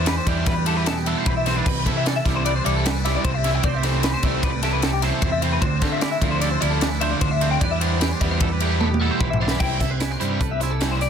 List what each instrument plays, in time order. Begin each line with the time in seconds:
Already playing: picked electric bass E2, overdriven electric guitar E3 G3 B3 E4, clean electric guitar E3 D4
0.06 clean electric guitar G4 B4, snare, ride
0.17 clean electric guitar C5
0.27 picked electric bass E2, overdriven electric guitar E3 G3 B3 E4, clean electric guitar G3 D5, kick, ride
0.37 clean electric guitar C5
0.46 picked electric bass E2, clean electric guitar B4, kick, snare, ride
0.66 overdriven electric guitar E3 G3 B3 E4, clean electric guitar G4 A4, ride
0.77 clean electric guitar B4
0.86 clean electric guitar B2 A4, snare, ride
0.97 clean electric guitar G4
1.06 overdriven electric guitar E3 G3 B3 E4, clean electric guitar A4, ride
1.17 clean electric guitar C5
1.26 picked electric bass B1, clean electric guitar E3 B4, kick, ride
1.37 clean electric guitar E5
1.46 overdriven electric guitar E3 G3 B3 E4, clean electric guitar C4 C5, snare, ride
1.57 clean electric guitar D4 B4
1.66 picked electric bass C2, clean electric guitar C3 B4, kick, crash
1.86 picked electric bass C3, overdriven electric guitar E3 G3 C4 E4, clean electric guitar E4 A4, kick, ride
1.97 clean electric guitar E5
2.06 clean electric guitar A4 D5, snare, ride
2.16 clean electric guitar E5
2.25 picked electric bass C2, overdriven electric guitar E3 G3 C4 E4, clean electric guitar G3, kick, snare, ride
2.36 clean electric guitar C5
2.45 clean electric guitar B4 D5, ride
2.56 clean electric guitar C5
2.65 picked electric bass C2, overdriven electric guitar E3 G3 C4 E4, clean electric guitar A4 D5, ride
2.76 clean electric guitar A4
2.85 clean electric guitar G3, snare, ride
2.96 clean electric guitar B4
3.05 overdriven electric guitar E3 G3 C4 E4, clean electric guitar D5 E5, snare, ride
3.15 clean electric guitar D5
3.24 picked electric bass C2, clean electric guitar C3 C5, kick, ride
3.34 clean electric guitar E5
3.44 overdriven electric guitar E3 G3 C4 E4, clean electric guitar E4, snare, ride
3.55 clean electric guitar G5
3.63 picked electric bass C2, clean electric guitar C3 A3 C4 G4 C5 D5, kick, ride
3.74 clean electric guitar E5
3.83 overdriven electric guitar E3 A3 C4 E4, clean electric guitar C4 C5, snare, ride
4.03 clean electric guitar G4 B4, snare, ride
4.14 clean electric guitar C5
4.23 picked electric bass C2, overdriven electric guitar E3 A3 C4 E4, clean electric guitar A3 D5, kick, ride
4.34 clean electric guitar C5
4.43 picked electric bass C2, clean electric guitar B4 D5, kick, ride
4.63 overdriven electric guitar E3 A3 C4 E4, clean electric guitar G4 A4, snare, ride
4.73 clean electric guitar B4
4.82 clean electric guitar C3 A4, snare, ride
4.93 clean electric guitar G4
5.02 overdriven electric guitar E3 A3 C4 E4, clean electric guitar A4 C5, snare, ride
5.22 picked electric bass E2, clean electric guitar C3 C5, kick, ride
5.32 clean electric guitar E5
5.42 overdriven electric guitar E3 A3 C4 E4, clean electric guitar C4 C5, ride
5.52 clean electric guitar B4
5.62 picked electric bass D2, clean electric guitar D3 C5, kick, ride
5.82 picked electric bass D3, overdriven electric guitar D3 A3 D4 F4, clean electric guitar C4 A4, kick, snare, ride
5.92 clean electric guitar E5
6.01 clean electric guitar E4 D5, snare, ride
6.11 clean electric guitar E5
6.22 picked electric bass D2, overdriven electric guitar D3 A3 D4 F4, clean electric guitar F3, kick, ride
6.31 clean electric guitar C5
6.41 clean electric guitar A4 D5, snare, ride
6.51 clean electric guitar C5
6.61 picked electric bass D2, overdriven electric guitar D3 A3 D4 F4, clean electric guitar E4 D5, ride
6.70 clean electric guitar A4
6.81 clean electric guitar D3, snare, ride
6.91 clean electric guitar B4
7.01 overdriven electric guitar D3 A3 D4 F4, clean electric guitar C5 E5, ride
7.11 clean electric guitar D5
7.21 picked electric bass D2, clean electric guitar D3 C5, kick, ride
7.31 clean electric guitar E5
7.41 overdriven electric guitar D3 A3 D4 F4, clean electric guitar C4, ride
7.51 clean electric guitar G5
7.61 picked electric bass E2, clean electric guitar E3 G3 D4 G4 B4 D5, kick, ride
7.71 clean electric guitar E5
7.81 overdriven electric guitar E3 G3 B3 E4, clean electric guitar D4 C5, ride
8.01 clean electric guitar G4 B4, snare, ride
8.11 clean electric guitar C5
8.21 picked electric bass E2, overdriven electric guitar E3 G3 B3 E4, clean electric guitar G3 D5, kick, ride
8.31 clean electric guitar C5
8.40 picked electric bass E2, clean electric guitar A4 B4, kick, ride
8.52 clean electric guitar B4
8.60 overdriven electric guitar E3 G3 B3 E4, clean electric guitar G4 A4, ride
8.71 clean electric guitar B4
8.80 clean electric guitar B2 A4, high tom
8.91 clean electric guitar G4, high tom
9.00 overdriven electric guitar E3 G3 B3 E4, clean electric guitar A4
9.11 clean electric guitar C5
9.20 picked electric bass B1, clean electric guitar E3 B4, kick
9.30 clean electric guitar E5, floor tom
9.40 overdriven electric guitar E3 G3 B3 E4, clean electric guitar D4 C5
9.48 clean electric guitar B4, snare
9.60 picked electric bass C2, clean electric guitar C3 E4 G5, overdriven electric guitar E3 G3 C4 E4, kick, crash
9.80 picked electric bass C2, clean electric guitar A4 E5, muted overdriven electric guitar stroke, kick, snare, closed hi-hat
9.91 clean electric guitar B4 C5
10.00 clean electric guitar E4 B4, muted overdriven electric guitar stroke, snare, closed hi-hat
10.10 clean electric guitar G4 C5
10.20 picked electric bass G2, overdriven electric guitar E3 G3 C4 E4, clean electric guitar G3, closed hi-hat
10.31 clean electric guitar B4
10.40 picked electric bass C2, clean electric guitar A4 B4, muted overdriven electric guitar stroke, kick, closed hi-hat
10.51 clean electric guitar E5
10.60 clean electric guitar E4 C5, muted overdriven electric guitar stroke, snare, closed hi-hat
10.71 clean electric guitar A4
10.81 overdriven electric guitar E3 G3 C4 E4, clean electric guitar G3, snare, closed hi-hat
10.91 clean electric guitar C5
11.01 clean electric guitar G4 D5, muted overdriven electric guitar stroke, snare, closed hi-hat